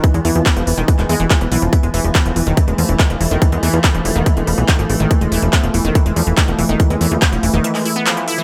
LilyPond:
<<
  \new Staff \with { instrumentName = "Synth arpeggio sound" } { \time 4/4 \key e \major \tempo 4 = 142 r1 | r1 | r4. r16 b16 r8 b16 b16 r4 | r1 |
r4. r16 b16 r2 | }
  \new Staff \with { instrumentName = "Ambient pad" } { \time 4/4 \key e \major <e b>1 | a1~ | a1~ | a1~ |
a1 | }
  \new Staff \with { instrumentName = "Synth arpeggio sound" } { \clef bass \time 4/4 \key e \major e16 gis16 e16 f16 b16 f16 e16 dis16 e16 gis16 gis16 e16 f16 e16 e16 f16 | e16 gis16 e16 f16 b16 f16 e16 dis16 e16 gis16 f16 e16 dis16 f16 e16 dis16 | e16 gis16 e16 f16 b16 f16 e16 dis16 e16 gis16 f16 e16 dis16 f16 e16 dis16 | e16 gis16 e16 f16 b16 f16 e16 dis16 e16 gis16 f16 e16 dis16 f16 e16 dis16 |
e16 gis16 e16 f16 b16 f16 e16 dis16 e16 gis16 e'16 b16 f16 e16 e'16 e16 | }
  \new Staff \with { instrumentName = "Analog synth bass" } { \clef bass \time 4/4 \key e \major r16 e,16 e,16 e,16 r16 e,,16 e,,16 e,,16 r16 e,,16 e,16 e,,16 r16 e,,16 b,,16 e,,16 | r16 e,,16 e,,16 e,,16 r16 e,,16 e,,16 e,,16 r16 e,,16 e,16 e,,16 r16 e,,16 e,,16 e,,16 | r16 e,16 e,16 e,16 r16 e,,16 e,,16 e,,16 r16 e,,16 e,,16 b,,16 r16 gis,,16 gis,,16 gis,,16 | r16 e,,16 e,,16 e,,16 r16 e,,16 e,,16 e,,16 r16 e,,16 e,16 e,,16 r16 e,,16 e,,16 e,,16 |
r16 e,16 e,16 e,16 r16 e,,16 e,,16 e,,16 r2 | }
  \new DrumStaff \with { instrumentName = "Drums" } \drummode { \time 4/4 <hh bd>16 hh16 hho16 hh16 <hc hh bd>16 hh16 hho16 hh16 <hh bd>16 <hc hh>16 hho8 <hc hh bd>16 hh16 hho16 hh16 | <hh bd>16 hh16 hho16 hh16 <hc hh bd>16 hh16 hho16 hh16 <hh bd>16 hh16 hho16 hh16 <hc hh bd>16 hh16 hho8 | <hh bd>16 hh16 hho8 <hc hh bd>16 hh16 hho16 hh16 <hh bd>16 hh16 hho16 hh16 <hc hh bd>16 hh16 hho16 hh16 | <hh bd>16 hh16 hho8 <hc hh bd>16 hh16 hho16 hh16 <hh bd>16 hh16 hho16 hh16 <hc hh bd>16 hh16 hho16 hh16 |
<hh bd>16 hh16 hho16 hh16 <hc hh bd>16 hh16 hho8 hh16 <hc hho>16 hho8 <hc hh>16 hh16 hho16 hh16 | }
>>